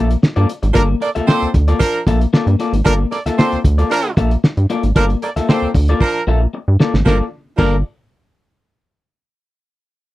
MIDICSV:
0, 0, Header, 1, 6, 480
1, 0, Start_track
1, 0, Tempo, 525855
1, 688, Time_signature, 4, 2, 24, 8
1, 9261, End_track
2, 0, Start_track
2, 0, Title_t, "Clean electric guitar"
2, 0, Program_c, 0, 27
2, 0, Note_on_c, 0, 58, 78
2, 116, Note_off_c, 0, 58, 0
2, 330, Note_on_c, 0, 74, 80
2, 333, Note_on_c, 0, 69, 78
2, 335, Note_on_c, 0, 65, 69
2, 341, Note_on_c, 0, 58, 69
2, 435, Note_off_c, 0, 58, 0
2, 436, Note_off_c, 0, 65, 0
2, 438, Note_off_c, 0, 69, 0
2, 441, Note_off_c, 0, 74, 0
2, 678, Note_on_c, 0, 58, 80
2, 687, Note_on_c, 0, 65, 73
2, 689, Note_on_c, 0, 69, 86
2, 693, Note_on_c, 0, 74, 87
2, 799, Note_off_c, 0, 74, 0
2, 804, Note_off_c, 0, 69, 0
2, 806, Note_off_c, 0, 65, 0
2, 867, Note_off_c, 0, 58, 0
2, 1051, Note_on_c, 0, 76, 60
2, 1058, Note_on_c, 0, 69, 64
2, 1062, Note_on_c, 0, 58, 48
2, 1062, Note_on_c, 0, 65, 60
2, 1150, Note_off_c, 0, 58, 0
2, 1155, Note_off_c, 0, 65, 0
2, 1160, Note_off_c, 0, 69, 0
2, 1161, Note_on_c, 0, 58, 90
2, 1166, Note_on_c, 0, 65, 86
2, 1170, Note_off_c, 0, 76, 0
2, 1171, Note_on_c, 0, 69, 95
2, 1174, Note_on_c, 0, 74, 99
2, 1348, Note_off_c, 0, 58, 0
2, 1351, Note_off_c, 0, 65, 0
2, 1353, Note_off_c, 0, 69, 0
2, 1355, Note_off_c, 0, 74, 0
2, 1532, Note_on_c, 0, 74, 68
2, 1538, Note_on_c, 0, 69, 71
2, 1540, Note_on_c, 0, 65, 66
2, 1544, Note_on_c, 0, 58, 63
2, 1638, Note_off_c, 0, 58, 0
2, 1641, Note_off_c, 0, 65, 0
2, 1641, Note_off_c, 0, 69, 0
2, 1644, Note_off_c, 0, 74, 0
2, 1890, Note_on_c, 0, 58, 73
2, 1894, Note_on_c, 0, 65, 85
2, 1899, Note_on_c, 0, 69, 83
2, 1902, Note_on_c, 0, 76, 77
2, 2005, Note_off_c, 0, 69, 0
2, 2011, Note_off_c, 0, 76, 0
2, 2012, Note_off_c, 0, 65, 0
2, 2036, Note_off_c, 0, 58, 0
2, 2127, Note_on_c, 0, 58, 78
2, 2130, Note_on_c, 0, 65, 81
2, 2134, Note_on_c, 0, 69, 85
2, 2138, Note_on_c, 0, 74, 87
2, 2242, Note_off_c, 0, 74, 0
2, 2244, Note_off_c, 0, 69, 0
2, 2251, Note_off_c, 0, 65, 0
2, 2311, Note_off_c, 0, 58, 0
2, 2367, Note_on_c, 0, 58, 73
2, 2373, Note_on_c, 0, 65, 74
2, 2375, Note_on_c, 0, 69, 74
2, 2379, Note_on_c, 0, 74, 74
2, 2481, Note_off_c, 0, 74, 0
2, 2484, Note_off_c, 0, 69, 0
2, 2489, Note_off_c, 0, 65, 0
2, 2514, Note_off_c, 0, 58, 0
2, 2604, Note_on_c, 0, 58, 70
2, 2609, Note_on_c, 0, 65, 75
2, 2612, Note_on_c, 0, 69, 90
2, 2614, Note_on_c, 0, 74, 87
2, 2727, Note_off_c, 0, 74, 0
2, 2733, Note_off_c, 0, 69, 0
2, 2737, Note_off_c, 0, 65, 0
2, 2789, Note_off_c, 0, 58, 0
2, 2976, Note_on_c, 0, 76, 61
2, 2984, Note_on_c, 0, 65, 54
2, 2984, Note_on_c, 0, 69, 59
2, 2991, Note_on_c, 0, 58, 53
2, 3074, Note_off_c, 0, 58, 0
2, 3079, Note_off_c, 0, 65, 0
2, 3080, Note_off_c, 0, 69, 0
2, 3085, Note_on_c, 0, 58, 89
2, 3090, Note_on_c, 0, 65, 94
2, 3091, Note_on_c, 0, 69, 108
2, 3093, Note_off_c, 0, 76, 0
2, 3097, Note_on_c, 0, 74, 100
2, 3270, Note_off_c, 0, 58, 0
2, 3272, Note_off_c, 0, 65, 0
2, 3273, Note_off_c, 0, 69, 0
2, 3276, Note_off_c, 0, 74, 0
2, 3451, Note_on_c, 0, 74, 76
2, 3458, Note_on_c, 0, 69, 69
2, 3460, Note_on_c, 0, 65, 64
2, 3465, Note_on_c, 0, 58, 55
2, 3560, Note_off_c, 0, 58, 0
2, 3564, Note_off_c, 0, 65, 0
2, 3565, Note_off_c, 0, 69, 0
2, 3569, Note_off_c, 0, 74, 0
2, 3806, Note_on_c, 0, 58, 62
2, 3810, Note_on_c, 0, 65, 69
2, 3813, Note_on_c, 0, 69, 74
2, 3818, Note_on_c, 0, 76, 75
2, 3935, Note_off_c, 0, 69, 0
2, 3940, Note_off_c, 0, 65, 0
2, 3940, Note_off_c, 0, 76, 0
2, 3953, Note_off_c, 0, 58, 0
2, 4288, Note_on_c, 0, 58, 60
2, 4292, Note_on_c, 0, 65, 76
2, 4297, Note_on_c, 0, 69, 61
2, 4299, Note_on_c, 0, 74, 78
2, 4403, Note_off_c, 0, 74, 0
2, 4408, Note_off_c, 0, 69, 0
2, 4412, Note_off_c, 0, 65, 0
2, 4434, Note_off_c, 0, 58, 0
2, 4525, Note_on_c, 0, 58, 72
2, 4531, Note_on_c, 0, 65, 85
2, 4536, Note_on_c, 0, 69, 91
2, 4539, Note_on_c, 0, 74, 88
2, 4651, Note_off_c, 0, 74, 0
2, 4654, Note_off_c, 0, 69, 0
2, 4659, Note_off_c, 0, 65, 0
2, 4710, Note_off_c, 0, 58, 0
2, 4895, Note_on_c, 0, 76, 62
2, 4900, Note_on_c, 0, 69, 59
2, 4905, Note_on_c, 0, 65, 51
2, 4908, Note_on_c, 0, 58, 49
2, 4997, Note_off_c, 0, 58, 0
2, 5002, Note_off_c, 0, 65, 0
2, 5008, Note_on_c, 0, 58, 101
2, 5009, Note_off_c, 0, 69, 0
2, 5013, Note_on_c, 0, 65, 91
2, 5018, Note_off_c, 0, 76, 0
2, 5020, Note_on_c, 0, 69, 93
2, 5021, Note_on_c, 0, 74, 97
2, 5191, Note_off_c, 0, 58, 0
2, 5193, Note_off_c, 0, 65, 0
2, 5197, Note_off_c, 0, 69, 0
2, 5198, Note_off_c, 0, 74, 0
2, 5378, Note_on_c, 0, 74, 81
2, 5383, Note_on_c, 0, 69, 61
2, 5388, Note_on_c, 0, 58, 62
2, 5388, Note_on_c, 0, 65, 69
2, 5480, Note_off_c, 0, 58, 0
2, 5485, Note_off_c, 0, 69, 0
2, 5486, Note_off_c, 0, 65, 0
2, 5488, Note_off_c, 0, 74, 0
2, 5724, Note_on_c, 0, 58, 60
2, 5729, Note_on_c, 0, 65, 68
2, 5734, Note_on_c, 0, 69, 77
2, 5737, Note_on_c, 0, 76, 77
2, 5847, Note_off_c, 0, 69, 0
2, 5851, Note_off_c, 0, 76, 0
2, 5852, Note_off_c, 0, 65, 0
2, 5872, Note_off_c, 0, 58, 0
2, 6204, Note_on_c, 0, 58, 62
2, 6210, Note_on_c, 0, 65, 63
2, 6213, Note_on_c, 0, 69, 70
2, 6216, Note_on_c, 0, 74, 65
2, 6324, Note_off_c, 0, 74, 0
2, 6331, Note_off_c, 0, 69, 0
2, 6332, Note_off_c, 0, 65, 0
2, 6352, Note_off_c, 0, 58, 0
2, 6447, Note_on_c, 0, 58, 78
2, 6451, Note_on_c, 0, 65, 81
2, 6456, Note_on_c, 0, 69, 85
2, 6462, Note_on_c, 0, 74, 76
2, 6596, Note_off_c, 0, 58, 0
2, 6598, Note_off_c, 0, 65, 0
2, 6601, Note_off_c, 0, 69, 0
2, 6604, Note_off_c, 0, 74, 0
2, 6927, Note_on_c, 0, 58, 84
2, 6930, Note_on_c, 0, 65, 77
2, 6934, Note_on_c, 0, 69, 96
2, 6936, Note_on_c, 0, 74, 97
2, 7076, Note_off_c, 0, 58, 0
2, 7078, Note_off_c, 0, 65, 0
2, 7080, Note_off_c, 0, 69, 0
2, 7081, Note_off_c, 0, 74, 0
2, 9261, End_track
3, 0, Start_track
3, 0, Title_t, "Horn section"
3, 0, Program_c, 1, 61
3, 672, Note_on_c, 1, 53, 100
3, 673, Note_on_c, 1, 62, 116
3, 673, Note_on_c, 1, 70, 116
3, 753, Note_off_c, 1, 53, 0
3, 754, Note_off_c, 1, 62, 0
3, 754, Note_off_c, 1, 70, 0
3, 925, Note_on_c, 1, 69, 74
3, 927, Note_on_c, 1, 58, 77
3, 927, Note_on_c, 1, 74, 86
3, 1002, Note_off_c, 1, 69, 0
3, 1004, Note_off_c, 1, 58, 0
3, 1004, Note_off_c, 1, 74, 0
3, 1155, Note_on_c, 1, 72, 118
3, 1157, Note_on_c, 1, 69, 105
3, 1162, Note_on_c, 1, 60, 113
3, 1352, Note_off_c, 1, 72, 0
3, 1353, Note_off_c, 1, 69, 0
3, 1356, Note_off_c, 1, 60, 0
3, 1636, Note_on_c, 1, 70, 112
3, 1637, Note_on_c, 1, 62, 101
3, 1639, Note_on_c, 1, 53, 101
3, 1832, Note_off_c, 1, 70, 0
3, 1833, Note_off_c, 1, 62, 0
3, 1834, Note_off_c, 1, 53, 0
3, 2602, Note_on_c, 1, 53, 109
3, 2603, Note_on_c, 1, 70, 123
3, 2605, Note_on_c, 1, 62, 113
3, 2680, Note_off_c, 1, 53, 0
3, 2680, Note_off_c, 1, 70, 0
3, 2682, Note_off_c, 1, 62, 0
3, 2840, Note_on_c, 1, 74, 84
3, 2842, Note_on_c, 1, 69, 80
3, 2844, Note_on_c, 1, 58, 70
3, 2918, Note_off_c, 1, 74, 0
3, 2919, Note_off_c, 1, 69, 0
3, 2921, Note_off_c, 1, 58, 0
3, 3079, Note_on_c, 1, 60, 102
3, 3082, Note_on_c, 1, 69, 101
3, 3082, Note_on_c, 1, 72, 112
3, 3274, Note_off_c, 1, 60, 0
3, 3275, Note_off_c, 1, 69, 0
3, 3275, Note_off_c, 1, 72, 0
3, 3565, Note_on_c, 1, 70, 115
3, 3566, Note_on_c, 1, 62, 112
3, 3572, Note_on_c, 1, 53, 106
3, 3757, Note_off_c, 1, 70, 0
3, 3758, Note_off_c, 1, 62, 0
3, 3761, Note_off_c, 1, 53, 0
3, 4525, Note_on_c, 1, 70, 119
3, 4526, Note_on_c, 1, 62, 94
3, 4529, Note_on_c, 1, 53, 107
3, 4602, Note_off_c, 1, 62, 0
3, 4602, Note_off_c, 1, 70, 0
3, 4604, Note_off_c, 1, 53, 0
3, 4770, Note_on_c, 1, 58, 74
3, 4770, Note_on_c, 1, 69, 77
3, 4772, Note_on_c, 1, 74, 78
3, 4845, Note_off_c, 1, 58, 0
3, 4845, Note_off_c, 1, 69, 0
3, 4846, Note_off_c, 1, 74, 0
3, 5010, Note_on_c, 1, 60, 105
3, 5010, Note_on_c, 1, 69, 105
3, 5010, Note_on_c, 1, 72, 104
3, 5200, Note_off_c, 1, 60, 0
3, 5200, Note_off_c, 1, 69, 0
3, 5200, Note_off_c, 1, 72, 0
3, 5481, Note_on_c, 1, 70, 108
3, 5482, Note_on_c, 1, 62, 93
3, 5485, Note_on_c, 1, 53, 104
3, 5675, Note_off_c, 1, 70, 0
3, 5676, Note_off_c, 1, 62, 0
3, 5677, Note_off_c, 1, 53, 0
3, 6437, Note_on_c, 1, 70, 90
3, 6439, Note_on_c, 1, 62, 88
3, 6440, Note_on_c, 1, 53, 95
3, 6544, Note_off_c, 1, 70, 0
3, 6546, Note_off_c, 1, 53, 0
3, 6546, Note_off_c, 1, 62, 0
3, 6910, Note_on_c, 1, 70, 94
3, 6912, Note_on_c, 1, 62, 89
3, 6913, Note_on_c, 1, 53, 87
3, 7084, Note_off_c, 1, 70, 0
3, 7085, Note_off_c, 1, 62, 0
3, 7086, Note_off_c, 1, 53, 0
3, 9261, End_track
4, 0, Start_track
4, 0, Title_t, "Analog synth bass"
4, 0, Program_c, 2, 38
4, 0, Note_on_c, 2, 34, 99
4, 147, Note_off_c, 2, 34, 0
4, 336, Note_on_c, 2, 43, 84
4, 420, Note_off_c, 2, 43, 0
4, 576, Note_on_c, 2, 32, 98
4, 659, Note_off_c, 2, 32, 0
4, 690, Note_on_c, 2, 31, 104
4, 867, Note_off_c, 2, 31, 0
4, 1063, Note_on_c, 2, 38, 53
4, 1106, Note_off_c, 2, 38, 0
4, 1298, Note_on_c, 2, 38, 51
4, 1342, Note_off_c, 2, 38, 0
4, 1409, Note_on_c, 2, 38, 96
4, 1586, Note_off_c, 2, 38, 0
4, 1887, Note_on_c, 2, 34, 91
4, 2064, Note_off_c, 2, 34, 0
4, 2251, Note_on_c, 2, 43, 93
4, 2336, Note_off_c, 2, 43, 0
4, 2491, Note_on_c, 2, 32, 89
4, 2575, Note_off_c, 2, 32, 0
4, 2609, Note_on_c, 2, 31, 93
4, 2785, Note_off_c, 2, 31, 0
4, 2973, Note_on_c, 2, 38, 48
4, 3018, Note_off_c, 2, 38, 0
4, 3220, Note_on_c, 2, 38, 53
4, 3263, Note_off_c, 2, 38, 0
4, 3326, Note_on_c, 2, 38, 95
4, 3504, Note_off_c, 2, 38, 0
4, 3808, Note_on_c, 2, 34, 90
4, 3984, Note_off_c, 2, 34, 0
4, 4175, Note_on_c, 2, 43, 82
4, 4257, Note_off_c, 2, 43, 0
4, 4414, Note_on_c, 2, 32, 85
4, 4497, Note_off_c, 2, 32, 0
4, 4526, Note_on_c, 2, 31, 101
4, 4704, Note_off_c, 2, 31, 0
4, 4894, Note_on_c, 2, 38, 53
4, 4939, Note_off_c, 2, 38, 0
4, 5131, Note_on_c, 2, 38, 49
4, 5176, Note_off_c, 2, 38, 0
4, 5247, Note_on_c, 2, 38, 93
4, 5424, Note_off_c, 2, 38, 0
4, 5727, Note_on_c, 2, 34, 89
4, 5904, Note_off_c, 2, 34, 0
4, 6097, Note_on_c, 2, 43, 91
4, 6179, Note_off_c, 2, 43, 0
4, 6335, Note_on_c, 2, 32, 100
4, 6418, Note_off_c, 2, 32, 0
4, 6445, Note_on_c, 2, 31, 97
4, 6585, Note_off_c, 2, 31, 0
4, 6923, Note_on_c, 2, 31, 99
4, 7148, Note_off_c, 2, 31, 0
4, 9261, End_track
5, 0, Start_track
5, 0, Title_t, "Muted clean electric guitar strokes"
5, 94, Note_on_c, 9, 29, 51
5, 185, Note_off_c, 9, 29, 0
5, 207, Note_on_c, 9, 29, 35
5, 298, Note_off_c, 9, 29, 0
5, 446, Note_on_c, 9, 29, 40
5, 537, Note_off_c, 9, 29, 0
5, 572, Note_on_c, 9, 29, 47
5, 663, Note_off_c, 9, 29, 0
5, 810, Note_on_c, 9, 29, 47
5, 901, Note_off_c, 9, 29, 0
5, 918, Note_on_c, 9, 29, 42
5, 1009, Note_off_c, 9, 29, 0
5, 1409, Note_on_c, 9, 29, 45
5, 1500, Note_off_c, 9, 29, 0
5, 2014, Note_on_c, 9, 29, 54
5, 2105, Note_off_c, 9, 29, 0
5, 2253, Note_on_c, 9, 29, 50
5, 2344, Note_off_c, 9, 29, 0
5, 2492, Note_on_c, 9, 29, 37
5, 2583, Note_off_c, 9, 29, 0
5, 2738, Note_on_c, 9, 29, 42
5, 2829, Note_off_c, 9, 29, 0
5, 2847, Note_on_c, 9, 29, 52
5, 2938, Note_off_c, 9, 29, 0
5, 3330, Note_on_c, 9, 29, 42
5, 3421, Note_off_c, 9, 29, 0
5, 3571, Note_on_c, 9, 29, 45
5, 3663, Note_off_c, 9, 29, 0
5, 3943, Note_on_c, 9, 29, 42
5, 4035, Note_off_c, 9, 29, 0
5, 4051, Note_on_c, 9, 29, 48
5, 4143, Note_off_c, 9, 29, 0
5, 4414, Note_on_c, 9, 29, 36
5, 4505, Note_off_c, 9, 29, 0
5, 4662, Note_on_c, 9, 29, 42
5, 4753, Note_off_c, 9, 29, 0
5, 4772, Note_on_c, 9, 29, 45
5, 4863, Note_off_c, 9, 29, 0
5, 5255, Note_on_c, 9, 29, 39
5, 5346, Note_off_c, 9, 29, 0
5, 5491, Note_on_c, 9, 29, 46
5, 5582, Note_off_c, 9, 29, 0
5, 5855, Note_on_c, 9, 29, 39
5, 5946, Note_off_c, 9, 29, 0
5, 5965, Note_on_c, 9, 29, 44
5, 6056, Note_off_c, 9, 29, 0
5, 6335, Note_on_c, 9, 29, 33
5, 6426, Note_off_c, 9, 29, 0
5, 9261, End_track
6, 0, Start_track
6, 0, Title_t, "Drums"
6, 97, Note_on_c, 9, 42, 56
6, 188, Note_off_c, 9, 42, 0
6, 211, Note_on_c, 9, 38, 117
6, 302, Note_off_c, 9, 38, 0
6, 331, Note_on_c, 9, 42, 34
6, 422, Note_off_c, 9, 42, 0
6, 451, Note_on_c, 9, 42, 70
6, 542, Note_off_c, 9, 42, 0
6, 574, Note_on_c, 9, 42, 53
6, 665, Note_off_c, 9, 42, 0
6, 685, Note_on_c, 9, 42, 90
6, 686, Note_on_c, 9, 36, 97
6, 777, Note_off_c, 9, 42, 0
6, 778, Note_off_c, 9, 36, 0
6, 928, Note_on_c, 9, 42, 73
6, 1019, Note_off_c, 9, 42, 0
6, 1054, Note_on_c, 9, 42, 52
6, 1146, Note_off_c, 9, 42, 0
6, 1172, Note_on_c, 9, 38, 118
6, 1264, Note_off_c, 9, 38, 0
6, 1297, Note_on_c, 9, 42, 39
6, 1388, Note_off_c, 9, 42, 0
6, 1407, Note_on_c, 9, 36, 103
6, 1409, Note_on_c, 9, 42, 71
6, 1499, Note_off_c, 9, 36, 0
6, 1501, Note_off_c, 9, 42, 0
6, 1532, Note_on_c, 9, 42, 52
6, 1623, Note_off_c, 9, 42, 0
6, 1646, Note_on_c, 9, 36, 101
6, 1648, Note_on_c, 9, 42, 105
6, 1737, Note_off_c, 9, 36, 0
6, 1740, Note_off_c, 9, 42, 0
6, 1778, Note_on_c, 9, 42, 33
6, 1870, Note_off_c, 9, 42, 0
6, 1887, Note_on_c, 9, 36, 93
6, 1893, Note_on_c, 9, 42, 67
6, 1978, Note_off_c, 9, 36, 0
6, 1985, Note_off_c, 9, 42, 0
6, 2020, Note_on_c, 9, 42, 50
6, 2111, Note_off_c, 9, 42, 0
6, 2132, Note_on_c, 9, 38, 117
6, 2224, Note_off_c, 9, 38, 0
6, 2257, Note_on_c, 9, 42, 37
6, 2349, Note_off_c, 9, 42, 0
6, 2370, Note_on_c, 9, 42, 71
6, 2462, Note_off_c, 9, 42, 0
6, 2496, Note_on_c, 9, 42, 58
6, 2588, Note_off_c, 9, 42, 0
6, 2608, Note_on_c, 9, 36, 100
6, 2609, Note_on_c, 9, 42, 85
6, 2700, Note_off_c, 9, 36, 0
6, 2701, Note_off_c, 9, 42, 0
6, 2851, Note_on_c, 9, 42, 72
6, 2942, Note_off_c, 9, 42, 0
6, 2976, Note_on_c, 9, 38, 38
6, 2978, Note_on_c, 9, 42, 54
6, 3067, Note_off_c, 9, 38, 0
6, 3070, Note_off_c, 9, 42, 0
6, 3094, Note_on_c, 9, 38, 107
6, 3186, Note_off_c, 9, 38, 0
6, 3215, Note_on_c, 9, 42, 40
6, 3307, Note_off_c, 9, 42, 0
6, 3328, Note_on_c, 9, 36, 86
6, 3331, Note_on_c, 9, 42, 70
6, 3419, Note_off_c, 9, 36, 0
6, 3422, Note_off_c, 9, 42, 0
6, 3457, Note_on_c, 9, 42, 54
6, 3548, Note_off_c, 9, 42, 0
6, 3570, Note_on_c, 9, 42, 104
6, 3662, Note_off_c, 9, 42, 0
6, 3699, Note_on_c, 9, 42, 36
6, 3790, Note_off_c, 9, 42, 0
6, 3807, Note_on_c, 9, 36, 106
6, 3812, Note_on_c, 9, 42, 72
6, 3898, Note_off_c, 9, 36, 0
6, 3903, Note_off_c, 9, 42, 0
6, 3936, Note_on_c, 9, 42, 49
6, 4027, Note_off_c, 9, 42, 0
6, 4051, Note_on_c, 9, 38, 112
6, 4142, Note_off_c, 9, 38, 0
6, 4173, Note_on_c, 9, 42, 40
6, 4264, Note_off_c, 9, 42, 0
6, 4289, Note_on_c, 9, 42, 64
6, 4380, Note_off_c, 9, 42, 0
6, 4411, Note_on_c, 9, 42, 57
6, 4502, Note_off_c, 9, 42, 0
6, 4525, Note_on_c, 9, 36, 105
6, 4525, Note_on_c, 9, 42, 91
6, 4617, Note_off_c, 9, 36, 0
6, 4617, Note_off_c, 9, 42, 0
6, 4653, Note_on_c, 9, 42, 36
6, 4745, Note_off_c, 9, 42, 0
6, 4768, Note_on_c, 9, 42, 75
6, 4859, Note_off_c, 9, 42, 0
6, 4896, Note_on_c, 9, 38, 39
6, 4898, Note_on_c, 9, 42, 54
6, 4987, Note_off_c, 9, 38, 0
6, 4990, Note_off_c, 9, 42, 0
6, 5012, Note_on_c, 9, 38, 101
6, 5103, Note_off_c, 9, 38, 0
6, 5244, Note_on_c, 9, 36, 90
6, 5246, Note_on_c, 9, 46, 68
6, 5335, Note_off_c, 9, 36, 0
6, 5338, Note_off_c, 9, 46, 0
6, 5369, Note_on_c, 9, 42, 51
6, 5460, Note_off_c, 9, 42, 0
6, 5482, Note_on_c, 9, 36, 97
6, 5573, Note_off_c, 9, 36, 0
6, 6210, Note_on_c, 9, 38, 88
6, 6301, Note_off_c, 9, 38, 0
6, 6336, Note_on_c, 9, 38, 96
6, 6427, Note_off_c, 9, 38, 0
6, 6443, Note_on_c, 9, 36, 91
6, 6451, Note_on_c, 9, 38, 81
6, 6535, Note_off_c, 9, 36, 0
6, 6542, Note_off_c, 9, 38, 0
6, 6924, Note_on_c, 9, 36, 97
6, 6924, Note_on_c, 9, 49, 88
6, 7015, Note_off_c, 9, 49, 0
6, 7016, Note_off_c, 9, 36, 0
6, 9261, End_track
0, 0, End_of_file